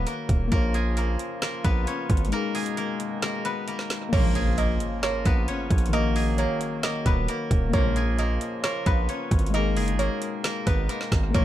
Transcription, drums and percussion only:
0.07 closed hi-hat medium
0.29 kick loud
0.29 closed hi-hat medium
0.52 kick loud
0.52 closed hi-hat medium
0.74 closed hi-hat medium
0.97 closed hi-hat medium
1.19 closed hi-hat medium
1.42 snare loud
1.42 closed hi-hat medium
1.65 kick loud
1.65 closed hi-hat medium
1.87 closed hi-hat medium
2.10 kick loud
2.10 closed hi-hat medium
2.17 closed hi-hat medium
2.25 closed hi-hat soft
2.32 closed hi-hat medium
2.55 closed hi-hat soft
2.55 open hi-hat medium
2.66 closed hi-hat medium
2.77 closed hi-hat medium
3.00 closed hi-hat medium
3.22 snare loud
3.22 closed hi-hat medium
3.45 closed hi-hat medium
3.68 closed hi-hat medium
3.79 snare medium
3.90 snare loud
3.90 closed hi-hat medium
4.13 kick loud
4.13 closed hi-hat medium
4.13 crash loud
4.35 closed hi-hat medium
4.58 closed hi-hat medium
4.80 closed hi-hat medium
5.03 snare loud
5.03 closed hi-hat medium
5.25 kick loud
5.25 closed hi-hat medium
5.48 closed hi-hat medium
5.70 kick loud
5.70 closed hi-hat medium
5.78 closed hi-hat medium
5.86 closed hi-hat soft
5.93 closed hi-hat medium
6.16 open hi-hat medium
6.38 closed hi-hat medium
6.61 closed hi-hat medium
6.83 snare loud
6.83 closed hi-hat medium
7.06 kick loud
7.06 closed hi-hat medium
7.28 closed hi-hat medium
7.51 kick loud
7.51 closed hi-hat medium
7.73 kick loud
7.73 closed hi-hat medium
7.96 closed hi-hat medium
8.19 closed hi-hat medium
8.41 closed hi-hat medium
8.64 snare loud
8.64 closed hi-hat medium
8.86 kick loud
8.86 closed hi-hat medium
9.09 closed hi-hat medium
9.31 kick loud
9.31 closed hi-hat medium
9.39 closed hi-hat medium
9.46 closed hi-hat soft
9.54 closed hi-hat medium
9.77 closed hi-hat soft
9.77 open hi-hat medium
9.88 closed hi-hat medium
9.99 closed hi-hat medium
10.22 closed hi-hat medium
10.44 snare loud
10.44 closed hi-hat medium
10.67 kick loud
10.67 closed hi-hat medium
10.89 closed hi-hat medium
11.01 snare medium
11.12 kick loud
11.12 snare loud
11.12 closed hi-hat medium
11.34 kick loud
11.34 closed hi-hat medium

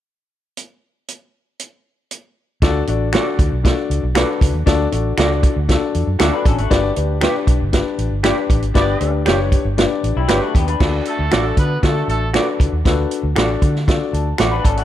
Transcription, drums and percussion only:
0.57 closed hi-hat medium
1.08 closed hi-hat medium
1.60 closed hi-hat medium
2.11 closed hi-hat medium
2.62 kick loud
2.62 snare medium
2.62 closed hi-hat medium
2.87 closed hi-hat medium
3.13 finger snap medium
3.13 snare loud
3.13 closed hi-hat medium
3.39 kick medium
3.39 closed hi-hat medium
3.65 kick medium
3.65 snare loud
3.65 closed hi-hat medium
3.91 closed hi-hat medium
4.15 finger snap medium
4.15 snare loud
4.15 closed hi-hat medium
4.41 kick medium
4.41 closed hi-hat medium
4.67 kick medium
4.67 snare medium
4.67 closed hi-hat medium
4.92 closed hi-hat medium
5.18 finger snap loud
5.18 snare loud
5.18 closed hi-hat medium
5.43 kick medium
5.43 closed hi-hat medium
5.69 kick loud
5.69 snare loud
5.69 closed hi-hat medium
5.95 closed hi-hat medium
6.19 finger snap medium
6.19 snare medium
6.19 closed hi-hat medium
6.46 kick medium
6.46 closed hi-hat medium
6.58 closed hi-hat soft
6.71 kick medium
6.71 snare medium
6.71 closed hi-hat medium
6.96 closed hi-hat medium
7.21 finger snap medium
7.21 snare loud
7.21 closed hi-hat medium
7.47 kick medium
7.47 closed hi-hat medium
7.73 kick medium
7.73 snare loud
7.73 closed hi-hat medium
7.99 closed hi-hat medium
8.24 finger snap medium
8.24 snare medium
8.24 closed hi-hat medium
8.50 kick medium
8.50 closed hi-hat medium
8.62 closed hi-hat soft
8.75 kick medium
8.75 snare medium
8.75 closed hi-hat medium
9.01 closed hi-hat medium
9.26 finger snap medium
9.26 snare loud
9.26 closed hi-hat medium
9.52 kick medium
9.52 closed hi-hat medium
9.78 snare loud
9.78 closed hi-hat medium
10.04 closed hi-hat medium
10.28 finger snap medium
10.28 snare medium
10.28 closed hi-hat medium
10.55 kick medium
10.55 closed hi-hat medium
10.68 closed hi-hat soft
10.80 kick medium
10.80 snare medium
10.80 crash medium
11.05 closed hi-hat medium
11.31 finger snap medium
11.31 snare loud
11.31 closed hi-hat medium
11.57 kick medium
11.57 closed hi-hat medium
11.83 kick medium
11.83 snare loud
11.83 closed hi-hat medium
12.09 closed hi-hat medium
12.34 finger snap medium
12.34 snare medium
12.34 closed hi-hat medium
12.60 kick medium
12.60 closed hi-hat medium
12.85 kick loud
12.85 snare medium
12.85 closed hi-hat medium
13.11 closed hi-hat medium
13.36 finger snap medium
13.36 snare loud
13.36 closed hi-hat medium
13.62 kick medium
13.62 closed hi-hat medium
13.76 snare soft
13.88 kick medium
13.88 snare loud
13.88 closed hi-hat medium
14.14 closed hi-hat medium
14.38 finger snap medium
14.38 snare medium
14.38 closed hi-hat medium
14.65 kick medium
14.65 closed hi-hat medium
14.77 closed hi-hat soft

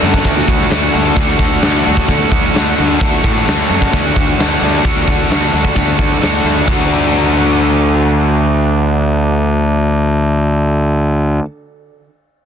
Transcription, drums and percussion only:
0.02 open hi-hat medium
0.14 kick medium
0.25 kick medium
0.25 open hi-hat medium
0.48 kick medium
0.48 open hi-hat medium
0.61 snare soft
0.70 snare loud
0.70 open hi-hat medium
0.94 open hi-hat medium
1.16 kick loud
1.16 open hi-hat medium
1.38 kick medium
1.38 open hi-hat soft
1.62 snare loud
1.62 open hi-hat medium
1.85 open hi-hat soft
1.97 kick medium
2.09 kick medium
2.09 open hi-hat medium
2.31 kick medium
2.31 open hi-hat soft
2.44 snare soft
2.55 snare loud
2.55 open hi-hat medium
2.78 open hi-hat medium
3.01 kick loud
3.01 open hi-hat medium
3.24 kick medium
3.24 open hi-hat medium
3.48 snare medium
3.48 open hi-hat medium
3.71 open hi-hat medium
3.82 kick medium
3.93 kick medium
3.93 open hi-hat medium
4.16 kick medium
4.16 open hi-hat medium
4.39 snare loud
4.39 open hi-hat medium
4.64 open hi-hat medium
4.85 kick loud
4.85 open hi-hat medium
5.08 kick medium
5.08 open hi-hat medium
5.31 snare medium
5.31 open hi-hat medium
5.54 open hi-hat soft
5.65 kick medium
5.76 kick medium
5.76 open hi-hat medium
5.99 kick medium
5.99 open hi-hat soft
6.12 snare soft
6.22 snare loud
6.22 open hi-hat medium
6.46 open hi-hat soft
6.68 kick medium
6.68 crash medium

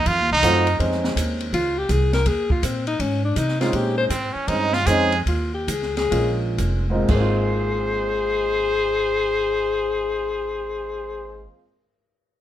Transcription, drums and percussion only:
0.06 kick soft
0.06 ride medium
0.43 kick soft
0.43 hi-hat pedal medium
0.43 ride medium
0.67 ride soft
0.80 kick soft
0.80 ride medium
0.92 snare soft
1.04 snare medium
1.16 kick soft
1.16 hi-hat pedal medium
1.16 ride medium
1.41 ride soft
1.53 kick soft
1.53 ride medium
1.89 kick soft
1.89 hi-hat pedal soft
1.89 ride medium
2.13 snare soft
2.13 ride soft
2.26 kick soft
2.26 ride medium
2.50 kick medium
2.63 kick soft
2.63 hi-hat pedal medium
2.63 ride medium
2.87 ride soft
2.99 kick soft
2.99 ride medium
3.36 kick soft
3.36 hi-hat pedal medium
3.36 ride medium
3.49 snare soft
3.61 snare soft
3.61 ride soft
3.73 kick soft
3.73 ride medium
4.10 kick soft
4.10 hi-hat pedal medium
4.10 ride medium
4.48 kick soft
4.48 ride medium
4.73 snare soft
4.86 kick soft
4.86 hi-hat pedal medium
4.86 ride medium
5.12 ride soft
5.26 kick soft
5.26 ride medium
5.68 kick soft
5.68 hi-hat pedal medium
5.68 ride medium
5.83 snare soft
5.97 snare soft
5.97 ride soft
6.12 kick soft
6.12 ride medium
6.58 kick soft
6.58 hi-hat pedal medium
6.58 ride medium
7.08 kick medium
7.08 crash medium

